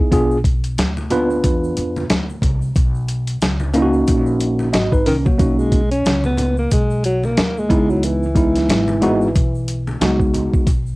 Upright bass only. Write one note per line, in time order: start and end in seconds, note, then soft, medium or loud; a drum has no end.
0.12 0.74 B1 medium
0.78 1.40 D2 medium
1.45 1.75 E2 loud
1.77 2.08 F2 medium
2.10 2.41 D2 medium
2.42 2.74 C2 medium
2.76 3.38 B1 loud
3.42 4.04 C#2 medium
4.08 4.71 A#1 loud
4.74 5.05 G#1 medium
5.07 5.38 C2 medium
5.40 6.02 B1 loud
6.06 6.68 C#2 medium
6.72 7.34 B1 medium
7.37 7.69 D#2 medium
7.70 8.65 C#2 medium
8.69 9.31 G#1 loud
9.36 9.98 B1 medium
10.01 10.50 C#2 medium
10.54 muted upright bass stroke soft
10.67 10.96 B1 medium